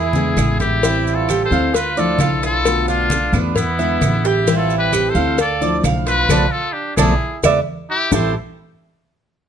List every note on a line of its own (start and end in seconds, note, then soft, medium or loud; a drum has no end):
0.00 0.33 E2 medium
0.00 0.13 E4 loud
0.00 0.56 E4 medium
0.00 0.56 G#4 medium
0.13 0.35 D3 medium
0.13 0.36 G#3 medium
0.13 0.37 B3 medium
0.13 0.36 E4 medium
0.13 0.37 G#4 medium
0.13 high conga medium
0.13 maracas soft
0.36 1.44 A1 medium
0.36 0.81 D3 medium
0.36 0.82 G#3 medium
0.36 0.82 B3 medium
0.36 0.82 E4 medium
0.36 0.82 E5 medium
0.36 cowbell medium
0.36 high conga medium
0.36 claves medium
0.36 maracas medium
0.59 1.15 E4 medium
0.59 1.17 G4 loud
0.59 cowbell medium
0.59 low conga medium
0.59 maracas soft
0.83 1.27 E3 medium
0.83 1.27 G3 medium
0.83 1.28 C4 medium
0.83 1.28 E4 medium
0.83 cowbell loud
0.83 high conga soft
0.83 maracas medium
1.06 high conga soft
1.06 maracas soft
1.14 1.44 F4 medium
1.14 1.44 A4 medium
1.28 1.50 E3 soft
1.28 1.50 G3 medium
1.28 1.51 C4 soft
1.28 1.50 E4 medium
1.28 1.51 G4 medium
1.28 cowbell medium
1.28 high conga medium
1.28 claves medium
1.28 maracas medium
1.44 1.76 A4 medium
1.44 1.77 C5 medium
1.51 2.15 D2 medium
1.51 1.74 G3 medium
1.51 1.73 C4 medium
1.51 1.73 E4 medium
1.51 1.96 F5 medium
1.51 high conga soft
1.51 maracas soft
1.74 1.97 F4 medium
1.74 2.01 B4 medium
1.74 muted steel-string acoustic guitar stroke medium
1.74 cowbell loud
1.74 high conga soft
1.74 maracas medium
1.97 2.19 F3 medium
1.97 2.19 A3 medium
1.97 2.19 D4 medium
1.97 2.19 E4 medium
1.97 2.42 F4 medium
1.97 2.43 A4 loud
1.97 2.19 D5 medium
1.97 high conga soft
1.97 maracas soft
2.19 3.27 B1 medium
2.19 2.64 F3 medium
2.19 2.65 A3 soft
2.19 2.65 D4 medium
2.19 2.65 E4 medium
2.19 2.42 F5 medium
2.19 cowbell medium
2.19 high conga loud
2.19 claves medium
2.19 maracas medium
2.43 2.85 F4 medium
2.43 2.86 A4 loud
2.43 2.87 B4 medium
2.43 cowbell medium
2.43 maracas soft
2.64 3.09 B2 medium
2.64 3.09 D3 medium
2.64 3.10 A3 medium
2.64 3.10 B3 medium
2.64 3.10 F4 medium
2.64 cowbell loud
2.64 high conga soft
2.64 claves medium
2.64 maracas medium
2.87 3.52 D4 medium
2.87 3.39 F4 loud
2.87 3.32 F5 medium
2.87 high conga soft
2.87 maracas soft
3.10 3.32 D3 medium
3.10 3.33 A3 medium
3.10 3.32 B3 medium
3.10 cowbell medium
3.10 high conga medium
3.10 maracas medium
3.33 3.97 E2 medium
3.33 3.56 D3 medium
3.33 3.56 A3 medium
3.33 3.55 B3 medium
3.33 3.55 F4 medium
3.33 3.78 B4 medium
3.33 low conga medium
3.33 claves medium
3.33 maracas soft
3.56 4.27 B3 medium
3.56 4.28 E4 medium
3.56 muted steel-string acoustic guitar stroke medium
3.56 cowbell loud
3.56 high conga soft
3.56 low conga medium
3.56 maracas medium
3.78 4.01 D3 medium
3.78 4.01 G#3 medium
3.78 4.01 B3 medium
3.78 4.01 E4 medium
3.78 4.23 E5 medium
3.78 high conga soft
3.78 maracas soft
4.01 5.09 A1 medium
4.01 4.46 D3 medium
4.01 4.47 G#3 medium
4.01 4.47 B3 medium
4.01 4.47 E4 medium
4.01 cowbell medium
4.01 high conga medium
4.01 claves medium
4.01 maracas medium
4.24 4.55 E4 medium
4.24 4.47 G4 medium
4.24 4.56 G4 loud
4.24 cowbell medium
4.24 high conga soft
4.24 maracas soft
4.47 4.92 E3 medium
4.47 4.92 G3 medium
4.47 4.93 C4 medium
4.47 4.91 E4 medium
4.47 4.93 E4 medium
4.47 cowbell loud
4.47 high conga soft
4.47 maracas medium
4.56 4.76 F4 medium
4.56 4.77 A4 medium
4.70 high conga soft
4.70 maracas soft
4.78 5.10 G4 medium
4.78 5.12 B4 loud
4.93 5.15 E3 medium
4.93 5.15 G3 medium
4.93 5.15 C4 soft
4.93 5.15 E4 medium
4.93 5.15 G4 medium
4.93 cowbell medium
4.93 high conga medium
4.93 claves medium
4.93 maracas medium
5.09 5.39 A4 medium
5.09 5.39 C5 loud
5.15 5.79 D2 loud
5.15 5.39 G3 medium
5.15 5.38 C4 medium
5.15 5.38 E4 medium
5.15 5.59 F5 medium
5.15 maracas soft
5.38 5.78 A4 medium
5.38 5.78 D5 loud
5.38 muted steel-string acoustic guitar stroke medium
5.38 cowbell loud
5.38 high conga soft
5.38 maracas medium
5.61 5.83 F3 medium
5.61 5.84 A3 medium
5.61 5.83 D4 medium
5.61 5.83 E4 medium
5.61 5.83 D5 medium
5.61 high conga soft
5.61 maracas soft
5.83 6.26 B1 medium
5.83 6.29 F3 medium
5.83 6.29 A3 medium
5.83 6.29 D4 medium
5.83 6.30 E4 medium
5.83 6.06 F5 medium
5.83 cowbell medium
5.83 high conga medium
5.83 claves medium
5.83 maracas medium
6.07 6.51 F4 medium
6.07 6.53 B4 loud
6.07 6.29 B4 medium
6.07 cowbell medium
6.07 maracas soft
6.29 6.46 B1 medium
6.29 6.45 F3 loud
6.29 6.45 A3 medium
6.29 6.45 B3 medium
6.29 6.45 A4 loud
6.29 6.45 B4 loud
6.29 6.45 D5 medium
6.29 cowbell loud
6.29 high conga loud
6.29 claves medium
6.29 maracas loud
6.51 6.75 F4 medium
6.51 6.74 A4 loud
6.73 6.96 D4 medium
6.73 6.96 G4 medium
6.97 7.14 B1 loud
6.97 7.13 F3 medium
6.97 7.13 A3 medium
6.97 7.13 B3 loud
6.97 7.40 E4 medium
6.97 7.40 G#4 medium
6.97 7.13 A4 loud
6.97 7.13 B4 loud
6.97 7.13 D5 medium
6.97 cowbell medium
6.97 high conga medium
6.97 claves loud
6.97 maracas loud
7.43 7.60 E2 loud
7.43 7.58 E3 loud
7.43 7.58 G#3 medium
7.43 7.58 B3 medium
7.43 7.59 B4 medium
7.43 7.59 D5 medium
7.43 7.59 E5 medium
7.43 cowbell loud
7.43 high conga medium
7.43 claves loud
7.43 maracas loud
7.90 8.11 E4 loud
7.90 8.11 G4 loud
8.12 8.33 A1 medium
8.12 8.30 A2 medium
8.12 8.30 E3 medium
8.12 8.31 G3 medium
8.12 8.34 A3 medium
8.12 8.31 C4 medium
8.12 8.34 E4 medium
8.12 8.31 E4 medium
8.12 8.34 G4 medium
8.12 8.34 A4 medium
8.12 8.34 C5 medium
8.12 low bongo loud
8.12 low conga loud
8.12 claves medium
8.12 maracas loud